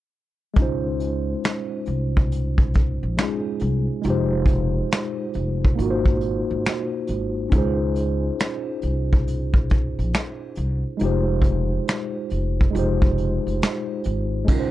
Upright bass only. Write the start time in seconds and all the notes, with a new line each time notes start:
0.57 C#2
1.87 C2
3.03 A#1
3.61 C2
4.05 F1
5.35 F1
5.79 G#1
6.51 G#1
7.09 G#1
7.52 C#2
8.83 C2
9.99 A#1
10.57 C2
11.01 F1
12.32 F1
12.75 F1
13.47 F1
14.06 G#1
14.49 C#2